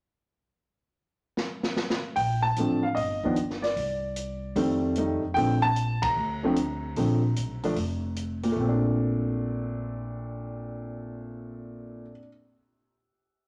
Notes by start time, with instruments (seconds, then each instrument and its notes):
1.37 snare
1.63 snare
1.76 snare
1.90 snare
2.16 upright bass A#1, upright piano G5, kick, open hi-hat
2.42 upright piano A5
2.56 upright bass A1, upright piano D3 F3 A3 C4, closed hi-hat
2.83 upright piano F5
2.95 upright bass G1, upright piano D#5, kick, open hi-hat
3.24 upright piano D#3 F3 B3 D4, kick
3.36 closed hi-hat
3.50 snare
3.62 upright piano D5, snare, open hi-hat
3.76 upright bass C2, kick, open hi-hat
4.16 closed hi-hat
4.56 upright bass F2, upright piano D#3 G3 A3 C4, kick, open hi-hat
4.95 upright piano D#3 G3 A3 D#4, closed hi-hat
5.22 upright bass F2
5.34 upright bass A#1, upright piano D3 F3 A3 C4 G5, kick, open hi-hat
5.62 upright piano A5
5.76 closed hi-hat
6.02 upright bass B1, upright piano A#5, kick, ride
6.17 upright bass D2
6.43 upright piano D3 F3 A3 C4
6.56 closed hi-hat
6.96 upright bass A#1, upright piano D3 F3 A3 C4, kick, open hi-hat
7.36 upright bass B1, closed hi-hat
7.63 upright piano D3 F3 A3 D4, open hi-hat
7.76 upright bass F1, kick, open hi-hat
8.16 closed hi-hat
8.43 upright piano A#2, open hi-hat
8.52 upright piano A3
8.56 upright bass A#1, upright piano C4
8.69 upright piano D4